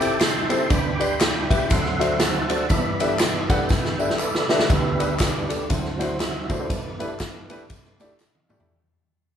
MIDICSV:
0, 0, Header, 1, 4, 480
1, 0, Start_track
1, 0, Key_signature, 1, "major"
1, 0, Tempo, 499584
1, 679, Time_signature, 4, 2, 24, 8
1, 8997, End_track
2, 0, Start_track
2, 0, Title_t, "Tonewheel organ"
2, 0, Program_c, 0, 16
2, 0, Note_on_c, 0, 76, 64
2, 0, Note_on_c, 0, 79, 81
2, 0, Note_on_c, 0, 81, 82
2, 0, Note_on_c, 0, 86, 111
2, 172, Note_off_c, 0, 76, 0
2, 182, Note_on_c, 0, 84, 107
2, 194, Note_off_c, 0, 81, 0
2, 202, Note_on_c, 0, 76, 70
2, 206, Note_on_c, 0, 81, 70
2, 210, Note_off_c, 0, 86, 0
2, 647, Note_off_c, 0, 76, 0
2, 649, Note_off_c, 0, 79, 0
2, 649, Note_off_c, 0, 81, 0
2, 668, Note_on_c, 0, 86, 109
2, 680, Note_on_c, 0, 50, 55
2, 685, Note_off_c, 0, 84, 0
2, 686, Note_on_c, 0, 59, 53
2, 689, Note_on_c, 0, 83, 76
2, 693, Note_on_c, 0, 62, 69
2, 696, Note_on_c, 0, 79, 78
2, 767, Note_off_c, 0, 86, 0
2, 897, Note_on_c, 0, 86, 70
2, 957, Note_on_c, 0, 84, 99
2, 967, Note_off_c, 0, 86, 0
2, 1025, Note_off_c, 0, 50, 0
2, 1028, Note_off_c, 0, 59, 0
2, 1032, Note_off_c, 0, 62, 0
2, 1141, Note_off_c, 0, 84, 0
2, 1144, Note_off_c, 0, 83, 0
2, 1156, Note_on_c, 0, 83, 88
2, 1163, Note_off_c, 0, 79, 0
2, 1174, Note_on_c, 0, 74, 69
2, 1174, Note_on_c, 0, 79, 66
2, 1613, Note_off_c, 0, 74, 0
2, 1613, Note_off_c, 0, 79, 0
2, 1635, Note_on_c, 0, 84, 105
2, 1641, Note_on_c, 0, 50, 64
2, 1644, Note_on_c, 0, 54, 53
2, 1648, Note_on_c, 0, 76, 68
2, 1652, Note_off_c, 0, 83, 0
2, 1655, Note_on_c, 0, 78, 83
2, 1656, Note_on_c, 0, 60, 72
2, 2109, Note_on_c, 0, 81, 97
2, 2119, Note_off_c, 0, 78, 0
2, 2125, Note_on_c, 0, 72, 66
2, 2130, Note_on_c, 0, 78, 64
2, 2131, Note_off_c, 0, 84, 0
2, 2368, Note_off_c, 0, 50, 0
2, 2370, Note_off_c, 0, 54, 0
2, 2376, Note_off_c, 0, 60, 0
2, 2560, Note_off_c, 0, 81, 0
2, 2564, Note_off_c, 0, 76, 0
2, 2568, Note_off_c, 0, 72, 0
2, 2571, Note_off_c, 0, 78, 0
2, 2582, Note_on_c, 0, 83, 107
2, 2590, Note_on_c, 0, 43, 58
2, 2592, Note_on_c, 0, 52, 56
2, 2598, Note_on_c, 0, 59, 63
2, 2601, Note_on_c, 0, 76, 74
2, 2602, Note_on_c, 0, 74, 76
2, 2854, Note_off_c, 0, 83, 0
2, 2866, Note_on_c, 0, 83, 85
2, 3059, Note_on_c, 0, 81, 81
2, 3075, Note_off_c, 0, 83, 0
2, 3192, Note_off_c, 0, 81, 0
2, 3351, Note_off_c, 0, 76, 0
2, 3358, Note_on_c, 0, 79, 72
2, 3361, Note_on_c, 0, 71, 52
2, 3362, Note_on_c, 0, 76, 56
2, 3521, Note_off_c, 0, 74, 0
2, 3539, Note_off_c, 0, 43, 0
2, 3540, Note_off_c, 0, 52, 0
2, 3544, Note_off_c, 0, 59, 0
2, 3550, Note_on_c, 0, 43, 51
2, 3552, Note_on_c, 0, 52, 53
2, 3555, Note_on_c, 0, 59, 58
2, 3811, Note_off_c, 0, 43, 0
2, 3812, Note_off_c, 0, 52, 0
2, 3814, Note_off_c, 0, 59, 0
2, 3996, Note_off_c, 0, 79, 0
2, 4037, Note_on_c, 0, 74, 113
2, 4038, Note_off_c, 0, 71, 0
2, 4044, Note_on_c, 0, 69, 75
2, 4049, Note_on_c, 0, 71, 78
2, 4285, Note_off_c, 0, 76, 0
2, 4464, Note_on_c, 0, 78, 82
2, 4476, Note_off_c, 0, 74, 0
2, 4488, Note_off_c, 0, 69, 0
2, 4490, Note_off_c, 0, 71, 0
2, 4514, Note_on_c, 0, 50, 54
2, 4518, Note_off_c, 0, 78, 0
2, 4523, Note_on_c, 0, 59, 55
2, 4523, Note_on_c, 0, 76, 123
2, 4527, Note_on_c, 0, 67, 82
2, 4528, Note_on_c, 0, 71, 83
2, 4529, Note_on_c, 0, 62, 66
2, 4993, Note_off_c, 0, 67, 0
2, 4998, Note_off_c, 0, 71, 0
2, 5003, Note_on_c, 0, 74, 82
2, 5005, Note_on_c, 0, 67, 64
2, 5009, Note_on_c, 0, 71, 70
2, 5014, Note_off_c, 0, 76, 0
2, 5244, Note_off_c, 0, 50, 0
2, 5249, Note_off_c, 0, 59, 0
2, 5252, Note_off_c, 0, 62, 0
2, 5447, Note_off_c, 0, 74, 0
2, 5448, Note_off_c, 0, 67, 0
2, 5450, Note_off_c, 0, 71, 0
2, 5468, Note_on_c, 0, 50, 56
2, 5472, Note_on_c, 0, 54, 50
2, 5478, Note_on_c, 0, 66, 68
2, 5479, Note_on_c, 0, 72, 106
2, 5481, Note_on_c, 0, 64, 69
2, 5485, Note_on_c, 0, 60, 63
2, 5961, Note_on_c, 0, 76, 109
2, 5972, Note_off_c, 0, 72, 0
2, 6201, Note_off_c, 0, 50, 0
2, 6203, Note_off_c, 0, 54, 0
2, 6209, Note_off_c, 0, 60, 0
2, 6254, Note_off_c, 0, 76, 0
2, 6258, Note_on_c, 0, 69, 60
2, 6261, Note_on_c, 0, 74, 95
2, 6263, Note_on_c, 0, 71, 63
2, 6399, Note_off_c, 0, 66, 0
2, 6401, Note_off_c, 0, 64, 0
2, 6435, Note_on_c, 0, 43, 60
2, 6439, Note_on_c, 0, 52, 54
2, 6446, Note_on_c, 0, 59, 65
2, 6782, Note_off_c, 0, 43, 0
2, 6784, Note_off_c, 0, 52, 0
2, 6788, Note_off_c, 0, 59, 0
2, 7197, Note_on_c, 0, 43, 47
2, 7203, Note_on_c, 0, 52, 44
2, 7209, Note_on_c, 0, 59, 56
2, 7374, Note_off_c, 0, 43, 0
2, 7377, Note_off_c, 0, 52, 0
2, 7381, Note_off_c, 0, 59, 0
2, 7845, Note_off_c, 0, 69, 0
2, 7846, Note_off_c, 0, 74, 0
2, 7848, Note_off_c, 0, 71, 0
2, 8997, End_track
3, 0, Start_track
3, 0, Title_t, "Grand piano"
3, 0, Program_c, 1, 0
3, 0, Note_on_c, 1, 36, 70
3, 0, Note_on_c, 1, 48, 66
3, 0, Note_on_c, 1, 60, 77
3, 0, Note_on_c, 1, 64, 67
3, 0, Note_on_c, 1, 67, 78
3, 2, Note_on_c, 1, 69, 77
3, 3, Note_on_c, 1, 76, 78
3, 110, Note_off_c, 1, 60, 0
3, 111, Note_off_c, 1, 64, 0
3, 112, Note_off_c, 1, 67, 0
3, 116, Note_off_c, 1, 69, 0
3, 116, Note_off_c, 1, 76, 0
3, 476, Note_on_c, 1, 60, 72
3, 476, Note_on_c, 1, 64, 65
3, 476, Note_on_c, 1, 67, 67
3, 480, Note_on_c, 1, 69, 74
3, 480, Note_on_c, 1, 72, 76
3, 592, Note_off_c, 1, 60, 0
3, 593, Note_off_c, 1, 64, 0
3, 593, Note_off_c, 1, 67, 0
3, 595, Note_off_c, 1, 69, 0
3, 595, Note_off_c, 1, 72, 0
3, 636, Note_off_c, 1, 36, 0
3, 636, Note_off_c, 1, 48, 0
3, 672, Note_on_c, 1, 50, 67
3, 674, Note_on_c, 1, 38, 65
3, 955, Note_on_c, 1, 67, 81
3, 960, Note_on_c, 1, 71, 71
3, 965, Note_on_c, 1, 74, 88
3, 1072, Note_off_c, 1, 67, 0
3, 1075, Note_off_c, 1, 71, 0
3, 1077, Note_off_c, 1, 74, 0
3, 1432, Note_on_c, 1, 67, 66
3, 1439, Note_on_c, 1, 71, 70
3, 1444, Note_on_c, 1, 76, 86
3, 1550, Note_off_c, 1, 67, 0
3, 1554, Note_off_c, 1, 71, 0
3, 1556, Note_off_c, 1, 76, 0
3, 1597, Note_off_c, 1, 38, 0
3, 1597, Note_off_c, 1, 50, 0
3, 1635, Note_on_c, 1, 50, 73
3, 1636, Note_on_c, 1, 38, 74
3, 1916, Note_on_c, 1, 66, 78
3, 1917, Note_on_c, 1, 62, 82
3, 1921, Note_on_c, 1, 69, 71
3, 1922, Note_on_c, 1, 72, 73
3, 1922, Note_on_c, 1, 76, 82
3, 2032, Note_off_c, 1, 66, 0
3, 2033, Note_off_c, 1, 62, 0
3, 2035, Note_off_c, 1, 69, 0
3, 2035, Note_off_c, 1, 72, 0
3, 2036, Note_off_c, 1, 76, 0
3, 2398, Note_on_c, 1, 62, 67
3, 2400, Note_on_c, 1, 66, 65
3, 2401, Note_on_c, 1, 69, 67
3, 2405, Note_on_c, 1, 72, 65
3, 2406, Note_on_c, 1, 74, 74
3, 2513, Note_off_c, 1, 62, 0
3, 2514, Note_off_c, 1, 66, 0
3, 2515, Note_off_c, 1, 69, 0
3, 2517, Note_off_c, 1, 72, 0
3, 2517, Note_off_c, 1, 74, 0
3, 2558, Note_off_c, 1, 38, 0
3, 2558, Note_off_c, 1, 50, 0
3, 2601, Note_on_c, 1, 31, 72
3, 2602, Note_on_c, 1, 43, 66
3, 2882, Note_on_c, 1, 62, 80
3, 2883, Note_on_c, 1, 67, 70
3, 2887, Note_on_c, 1, 69, 76
3, 2887, Note_on_c, 1, 71, 75
3, 2890, Note_on_c, 1, 76, 77
3, 2995, Note_off_c, 1, 62, 0
3, 2996, Note_off_c, 1, 67, 0
3, 2998, Note_off_c, 1, 69, 0
3, 2998, Note_off_c, 1, 71, 0
3, 2999, Note_off_c, 1, 76, 0
3, 3357, Note_on_c, 1, 62, 73
3, 3358, Note_on_c, 1, 67, 65
3, 3361, Note_on_c, 1, 69, 66
3, 3364, Note_on_c, 1, 71, 73
3, 3364, Note_on_c, 1, 78, 79
3, 3472, Note_off_c, 1, 62, 0
3, 3473, Note_off_c, 1, 67, 0
3, 3475, Note_off_c, 1, 69, 0
3, 3476, Note_off_c, 1, 71, 0
3, 3476, Note_off_c, 1, 78, 0
3, 3832, Note_on_c, 1, 62, 80
3, 3833, Note_on_c, 1, 67, 60
3, 3835, Note_on_c, 1, 69, 71
3, 3839, Note_on_c, 1, 71, 65
3, 3843, Note_on_c, 1, 76, 74
3, 3950, Note_off_c, 1, 62, 0
3, 3951, Note_off_c, 1, 67, 0
3, 3952, Note_off_c, 1, 69, 0
3, 3953, Note_off_c, 1, 71, 0
3, 3956, Note_off_c, 1, 76, 0
3, 4317, Note_on_c, 1, 62, 74
3, 4320, Note_on_c, 1, 67, 75
3, 4320, Note_on_c, 1, 69, 73
3, 4324, Note_on_c, 1, 71, 71
3, 4326, Note_on_c, 1, 76, 92
3, 4432, Note_off_c, 1, 62, 0
3, 4434, Note_off_c, 1, 67, 0
3, 4434, Note_off_c, 1, 69, 0
3, 4436, Note_off_c, 1, 71, 0
3, 4437, Note_off_c, 1, 76, 0
3, 4481, Note_off_c, 1, 31, 0
3, 4481, Note_off_c, 1, 43, 0
3, 4513, Note_on_c, 1, 38, 67
3, 4515, Note_on_c, 1, 50, 67
3, 4794, Note_on_c, 1, 62, 78
3, 4796, Note_on_c, 1, 67, 69
3, 4804, Note_on_c, 1, 71, 83
3, 4911, Note_off_c, 1, 62, 0
3, 4912, Note_off_c, 1, 67, 0
3, 4916, Note_off_c, 1, 71, 0
3, 5269, Note_on_c, 1, 62, 72
3, 5274, Note_on_c, 1, 67, 61
3, 5279, Note_on_c, 1, 69, 82
3, 5388, Note_off_c, 1, 62, 0
3, 5391, Note_off_c, 1, 67, 0
3, 5393, Note_off_c, 1, 69, 0
3, 5437, Note_off_c, 1, 38, 0
3, 5438, Note_off_c, 1, 50, 0
3, 5468, Note_on_c, 1, 50, 70
3, 5474, Note_on_c, 1, 38, 69
3, 5752, Note_on_c, 1, 57, 69
3, 5753, Note_on_c, 1, 62, 69
3, 5755, Note_on_c, 1, 64, 65
3, 5759, Note_on_c, 1, 66, 76
3, 5760, Note_on_c, 1, 72, 84
3, 5870, Note_off_c, 1, 57, 0
3, 5870, Note_off_c, 1, 62, 0
3, 5871, Note_off_c, 1, 64, 0
3, 5873, Note_off_c, 1, 66, 0
3, 5874, Note_off_c, 1, 72, 0
3, 6234, Note_on_c, 1, 57, 70
3, 6237, Note_on_c, 1, 62, 66
3, 6240, Note_on_c, 1, 64, 64
3, 6241, Note_on_c, 1, 66, 67
3, 6244, Note_on_c, 1, 72, 78
3, 6295, Note_off_c, 1, 57, 0
3, 6296, Note_off_c, 1, 62, 0
3, 6298, Note_off_c, 1, 64, 0
3, 6298, Note_off_c, 1, 66, 0
3, 6300, Note_off_c, 1, 72, 0
3, 6329, Note_on_c, 1, 57, 72
3, 6334, Note_on_c, 1, 62, 68
3, 6337, Note_on_c, 1, 64, 58
3, 6341, Note_on_c, 1, 66, 63
3, 6343, Note_on_c, 1, 72, 82
3, 6394, Note_off_c, 1, 50, 0
3, 6397, Note_off_c, 1, 38, 0
3, 6432, Note_off_c, 1, 57, 0
3, 6432, Note_on_c, 1, 31, 71
3, 6432, Note_on_c, 1, 43, 64
3, 6434, Note_off_c, 1, 62, 0
3, 6435, Note_off_c, 1, 64, 0
3, 6438, Note_off_c, 1, 66, 0
3, 6438, Note_off_c, 1, 72, 0
3, 6717, Note_on_c, 1, 57, 72
3, 6720, Note_on_c, 1, 62, 68
3, 6722, Note_on_c, 1, 67, 69
3, 6725, Note_on_c, 1, 64, 78
3, 6729, Note_on_c, 1, 71, 91
3, 6832, Note_off_c, 1, 57, 0
3, 6834, Note_off_c, 1, 62, 0
3, 6835, Note_off_c, 1, 67, 0
3, 6836, Note_off_c, 1, 64, 0
3, 6838, Note_off_c, 1, 71, 0
3, 7200, Note_on_c, 1, 57, 81
3, 7202, Note_on_c, 1, 62, 77
3, 7207, Note_on_c, 1, 64, 84
3, 7208, Note_on_c, 1, 67, 79
3, 7209, Note_on_c, 1, 71, 104
3, 7314, Note_off_c, 1, 57, 0
3, 7314, Note_off_c, 1, 62, 0
3, 7317, Note_off_c, 1, 64, 0
3, 7317, Note_off_c, 1, 67, 0
3, 7318, Note_off_c, 1, 71, 0
3, 7685, Note_on_c, 1, 57, 87
3, 7689, Note_on_c, 1, 62, 85
3, 7690, Note_on_c, 1, 64, 75
3, 7694, Note_on_c, 1, 67, 82
3, 7697, Note_on_c, 1, 74, 95
3, 7796, Note_off_c, 1, 57, 0
3, 7798, Note_off_c, 1, 62, 0
3, 7798, Note_off_c, 1, 64, 0
3, 7800, Note_off_c, 1, 67, 0
3, 7802, Note_off_c, 1, 74, 0
3, 8157, Note_on_c, 1, 57, 89
3, 8163, Note_on_c, 1, 62, 67
3, 8167, Note_on_c, 1, 64, 67
3, 8168, Note_on_c, 1, 67, 76
3, 8169, Note_on_c, 1, 74, 95
3, 8216, Note_off_c, 1, 57, 0
3, 8219, Note_off_c, 1, 62, 0
3, 8221, Note_off_c, 1, 64, 0
3, 8221, Note_off_c, 1, 67, 0
3, 8221, Note_off_c, 1, 74, 0
3, 8259, Note_on_c, 1, 62, 76
3, 8260, Note_on_c, 1, 57, 81
3, 8261, Note_on_c, 1, 64, 73
3, 8268, Note_on_c, 1, 67, 76
3, 8270, Note_on_c, 1, 74, 94
3, 8315, Note_off_c, 1, 31, 0
3, 8315, Note_off_c, 1, 43, 0
3, 8356, Note_off_c, 1, 57, 0
3, 8356, Note_off_c, 1, 62, 0
3, 8357, Note_off_c, 1, 64, 0
3, 8360, Note_off_c, 1, 67, 0
3, 8361, Note_off_c, 1, 74, 0
3, 8997, End_track
4, 0, Start_track
4, 0, Title_t, "Drums"
4, 7, Note_on_c, 9, 54, 67
4, 10, Note_on_c, 9, 38, 31
4, 18, Note_on_c, 9, 53, 62
4, 103, Note_off_c, 9, 54, 0
4, 106, Note_off_c, 9, 38, 0
4, 114, Note_off_c, 9, 53, 0
4, 197, Note_on_c, 9, 39, 81
4, 197, Note_on_c, 9, 54, 89
4, 200, Note_on_c, 9, 53, 58
4, 201, Note_on_c, 9, 38, 111
4, 293, Note_off_c, 9, 39, 0
4, 293, Note_off_c, 9, 54, 0
4, 296, Note_off_c, 9, 53, 0
4, 297, Note_off_c, 9, 38, 0
4, 480, Note_on_c, 9, 53, 60
4, 485, Note_on_c, 9, 54, 55
4, 576, Note_off_c, 9, 53, 0
4, 581, Note_off_c, 9, 54, 0
4, 674, Note_on_c, 9, 53, 68
4, 676, Note_on_c, 9, 54, 77
4, 677, Note_on_c, 9, 36, 115
4, 770, Note_off_c, 9, 53, 0
4, 772, Note_off_c, 9, 54, 0
4, 774, Note_off_c, 9, 36, 0
4, 966, Note_on_c, 9, 53, 63
4, 966, Note_on_c, 9, 54, 55
4, 1062, Note_off_c, 9, 53, 0
4, 1062, Note_off_c, 9, 54, 0
4, 1157, Note_on_c, 9, 53, 77
4, 1158, Note_on_c, 9, 39, 101
4, 1158, Note_on_c, 9, 54, 105
4, 1162, Note_on_c, 9, 38, 113
4, 1253, Note_off_c, 9, 53, 0
4, 1254, Note_off_c, 9, 39, 0
4, 1254, Note_off_c, 9, 54, 0
4, 1258, Note_off_c, 9, 38, 0
4, 1446, Note_on_c, 9, 36, 115
4, 1449, Note_on_c, 9, 54, 61
4, 1451, Note_on_c, 9, 53, 70
4, 1542, Note_off_c, 9, 36, 0
4, 1545, Note_off_c, 9, 54, 0
4, 1547, Note_off_c, 9, 53, 0
4, 1632, Note_on_c, 9, 54, 77
4, 1640, Note_on_c, 9, 53, 83
4, 1642, Note_on_c, 9, 36, 106
4, 1728, Note_off_c, 9, 54, 0
4, 1736, Note_off_c, 9, 53, 0
4, 1738, Note_off_c, 9, 36, 0
4, 1781, Note_on_c, 9, 38, 33
4, 1877, Note_off_c, 9, 38, 0
4, 1925, Note_on_c, 9, 38, 34
4, 1933, Note_on_c, 9, 53, 59
4, 1934, Note_on_c, 9, 54, 68
4, 2021, Note_off_c, 9, 38, 0
4, 2029, Note_off_c, 9, 53, 0
4, 2031, Note_off_c, 9, 54, 0
4, 2111, Note_on_c, 9, 53, 57
4, 2112, Note_on_c, 9, 38, 105
4, 2116, Note_on_c, 9, 39, 81
4, 2116, Note_on_c, 9, 54, 80
4, 2207, Note_off_c, 9, 53, 0
4, 2208, Note_off_c, 9, 38, 0
4, 2212, Note_off_c, 9, 39, 0
4, 2212, Note_off_c, 9, 54, 0
4, 2398, Note_on_c, 9, 53, 64
4, 2399, Note_on_c, 9, 54, 53
4, 2494, Note_off_c, 9, 53, 0
4, 2495, Note_off_c, 9, 54, 0
4, 2589, Note_on_c, 9, 54, 75
4, 2595, Note_on_c, 9, 36, 106
4, 2595, Note_on_c, 9, 53, 68
4, 2685, Note_off_c, 9, 54, 0
4, 2691, Note_off_c, 9, 36, 0
4, 2691, Note_off_c, 9, 53, 0
4, 2880, Note_on_c, 9, 54, 51
4, 2884, Note_on_c, 9, 53, 69
4, 2976, Note_off_c, 9, 54, 0
4, 2980, Note_off_c, 9, 53, 0
4, 3067, Note_on_c, 9, 39, 112
4, 3067, Note_on_c, 9, 54, 104
4, 3070, Note_on_c, 9, 53, 67
4, 3075, Note_on_c, 9, 38, 110
4, 3163, Note_off_c, 9, 39, 0
4, 3163, Note_off_c, 9, 54, 0
4, 3166, Note_off_c, 9, 53, 0
4, 3171, Note_off_c, 9, 38, 0
4, 3359, Note_on_c, 9, 54, 60
4, 3360, Note_on_c, 9, 36, 107
4, 3360, Note_on_c, 9, 53, 73
4, 3455, Note_off_c, 9, 54, 0
4, 3456, Note_off_c, 9, 36, 0
4, 3456, Note_off_c, 9, 53, 0
4, 3545, Note_on_c, 9, 54, 78
4, 3557, Note_on_c, 9, 38, 71
4, 3559, Note_on_c, 9, 36, 111
4, 3642, Note_off_c, 9, 54, 0
4, 3653, Note_off_c, 9, 38, 0
4, 3655, Note_off_c, 9, 36, 0
4, 3700, Note_on_c, 9, 38, 54
4, 3796, Note_off_c, 9, 38, 0
4, 3840, Note_on_c, 9, 54, 64
4, 3936, Note_off_c, 9, 54, 0
4, 3940, Note_on_c, 9, 38, 63
4, 4028, Note_on_c, 9, 39, 90
4, 4028, Note_on_c, 9, 54, 77
4, 4036, Note_off_c, 9, 38, 0
4, 4124, Note_off_c, 9, 39, 0
4, 4124, Note_off_c, 9, 54, 0
4, 4178, Note_on_c, 9, 38, 81
4, 4274, Note_off_c, 9, 38, 0
4, 4317, Note_on_c, 9, 38, 99
4, 4322, Note_on_c, 9, 54, 51
4, 4413, Note_off_c, 9, 38, 0
4, 4414, Note_on_c, 9, 38, 101
4, 4418, Note_off_c, 9, 54, 0
4, 4510, Note_off_c, 9, 38, 0
4, 4510, Note_on_c, 9, 54, 78
4, 4515, Note_on_c, 9, 36, 127
4, 4516, Note_on_c, 9, 53, 73
4, 4606, Note_off_c, 9, 54, 0
4, 4611, Note_off_c, 9, 36, 0
4, 4612, Note_off_c, 9, 53, 0
4, 4805, Note_on_c, 9, 53, 64
4, 4807, Note_on_c, 9, 54, 55
4, 4901, Note_off_c, 9, 53, 0
4, 4903, Note_off_c, 9, 54, 0
4, 4990, Note_on_c, 9, 39, 105
4, 4990, Note_on_c, 9, 54, 100
4, 4995, Note_on_c, 9, 53, 76
4, 4999, Note_on_c, 9, 36, 107
4, 5000, Note_on_c, 9, 38, 115
4, 5086, Note_off_c, 9, 39, 0
4, 5086, Note_off_c, 9, 54, 0
4, 5091, Note_off_c, 9, 53, 0
4, 5095, Note_off_c, 9, 36, 0
4, 5096, Note_off_c, 9, 38, 0
4, 5285, Note_on_c, 9, 54, 54
4, 5287, Note_on_c, 9, 53, 65
4, 5381, Note_off_c, 9, 54, 0
4, 5383, Note_off_c, 9, 53, 0
4, 5475, Note_on_c, 9, 53, 84
4, 5475, Note_on_c, 9, 54, 80
4, 5480, Note_on_c, 9, 36, 110
4, 5571, Note_off_c, 9, 53, 0
4, 5571, Note_off_c, 9, 54, 0
4, 5576, Note_off_c, 9, 36, 0
4, 5620, Note_on_c, 9, 38, 35
4, 5716, Note_off_c, 9, 38, 0
4, 5763, Note_on_c, 9, 38, 33
4, 5768, Note_on_c, 9, 54, 63
4, 5771, Note_on_c, 9, 53, 64
4, 5859, Note_off_c, 9, 38, 0
4, 5864, Note_off_c, 9, 54, 0
4, 5867, Note_off_c, 9, 53, 0
4, 5958, Note_on_c, 9, 39, 79
4, 5958, Note_on_c, 9, 54, 82
4, 5959, Note_on_c, 9, 38, 99
4, 5959, Note_on_c, 9, 53, 59
4, 6054, Note_off_c, 9, 39, 0
4, 6054, Note_off_c, 9, 54, 0
4, 6055, Note_off_c, 9, 38, 0
4, 6055, Note_off_c, 9, 53, 0
4, 6241, Note_on_c, 9, 53, 58
4, 6243, Note_on_c, 9, 36, 91
4, 6252, Note_on_c, 9, 54, 60
4, 6337, Note_off_c, 9, 53, 0
4, 6340, Note_off_c, 9, 36, 0
4, 6348, Note_off_c, 9, 54, 0
4, 6437, Note_on_c, 9, 36, 118
4, 6438, Note_on_c, 9, 53, 78
4, 6439, Note_on_c, 9, 54, 78
4, 6533, Note_off_c, 9, 36, 0
4, 6534, Note_off_c, 9, 53, 0
4, 6535, Note_off_c, 9, 54, 0
4, 6727, Note_on_c, 9, 53, 61
4, 6729, Note_on_c, 9, 54, 58
4, 6823, Note_off_c, 9, 53, 0
4, 6825, Note_off_c, 9, 54, 0
4, 6914, Note_on_c, 9, 39, 111
4, 6914, Note_on_c, 9, 54, 108
4, 6915, Note_on_c, 9, 53, 67
4, 6920, Note_on_c, 9, 38, 116
4, 6921, Note_on_c, 9, 36, 96
4, 7010, Note_off_c, 9, 39, 0
4, 7010, Note_off_c, 9, 54, 0
4, 7011, Note_off_c, 9, 53, 0
4, 7016, Note_off_c, 9, 38, 0
4, 7017, Note_off_c, 9, 36, 0
4, 7203, Note_on_c, 9, 53, 68
4, 7207, Note_on_c, 9, 54, 58
4, 7299, Note_off_c, 9, 53, 0
4, 7303, Note_off_c, 9, 54, 0
4, 7395, Note_on_c, 9, 53, 94
4, 7400, Note_on_c, 9, 36, 109
4, 7400, Note_on_c, 9, 54, 74
4, 7491, Note_off_c, 9, 53, 0
4, 7496, Note_off_c, 9, 36, 0
4, 7496, Note_off_c, 9, 54, 0
4, 7540, Note_on_c, 9, 38, 34
4, 7636, Note_off_c, 9, 38, 0
4, 7682, Note_on_c, 9, 38, 30
4, 7684, Note_on_c, 9, 54, 67
4, 7690, Note_on_c, 9, 53, 57
4, 7778, Note_off_c, 9, 38, 0
4, 7780, Note_off_c, 9, 54, 0
4, 7786, Note_off_c, 9, 53, 0
4, 7874, Note_on_c, 9, 39, 81
4, 7874, Note_on_c, 9, 54, 81
4, 7881, Note_on_c, 9, 38, 60
4, 7971, Note_off_c, 9, 39, 0
4, 7971, Note_off_c, 9, 54, 0
4, 7977, Note_off_c, 9, 38, 0
4, 8022, Note_on_c, 9, 48, 64
4, 8118, Note_off_c, 9, 48, 0
4, 8162, Note_on_c, 9, 54, 49
4, 8167, Note_on_c, 9, 45, 87
4, 8258, Note_off_c, 9, 54, 0
4, 8263, Note_off_c, 9, 45, 0
4, 8263, Note_on_c, 9, 43, 105
4, 8359, Note_off_c, 9, 43, 0
4, 8997, End_track
0, 0, End_of_file